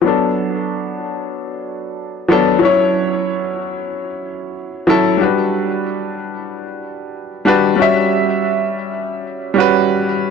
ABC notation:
X:1
M:4/4
L:1/16
Q:"Swing 16ths" 1/4=93
K:Bm
V:1 name="Grand piano"
[F,B,DA]12- [F,B,DA]2 [F,B,DA]2 | [F,CEc]12- [F,CEc]2 [F,CEA]2 | [G,DFB]12- [G,DFB]2 [G,DFB]2 | [G,CFe]8- [G,CFe]3 [G,CFB]4- [G,CFB] |]